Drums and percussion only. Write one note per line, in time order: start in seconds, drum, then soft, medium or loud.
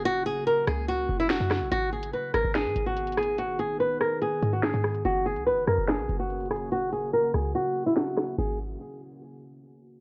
0.67 cross-stick loud
1.30 snare loud
1.51 cross-stick medium
1.51 snare medium
1.72 closed hi-hat medium
2.03 closed hi-hat medium
2.34 cross-stick loud
2.34 closed hi-hat medium
2.55 snare loud
2.55 closed hi-hat medium
2.76 closed hi-hat medium
2.97 closed hi-hat medium
3.07 closed hi-hat soft
3.12 closed hi-hat medium
3.17 cross-stick loud
3.17 closed hi-hat medium
3.23 closed hi-hat medium
3.38 closed hi-hat medium
3.59 closed hi-hat medium
4.01 cross-stick loud
4.22 closed hi-hat medium
4.42 closed hi-hat medium
4.63 snare loud
4.74 closed hi-hat medium
4.84 cross-stick loud
4.84 open hi-hat medium
4.95 closed hi-hat medium
5.05 closed hi-hat medium
5.36 closed hi-hat medium
5.67 cross-stick loud
5.67 closed hi-hat medium
5.88 snare loud
5.88 closed hi-hat medium
6.09 closed hi-hat medium
6.30 closed hi-hat medium
6.40 closed hi-hat soft
6.46 closed hi-hat medium
6.51 cross-stick loud
6.51 closed hi-hat medium
6.56 closed hi-hat medium
6.72 closed hi-hat medium
6.92 closed hi-hat medium
7.34 cross-stick loud
7.55 closed hi-hat medium
7.76 closed hi-hat medium
7.83 closed hi-hat medium
7.90 closed hi-hat soft
7.97 snare loud
8.07 closed hi-hat medium
8.17 cross-stick loud
8.17 snare medium
8.28 closed hi-hat medium
8.38 crash medium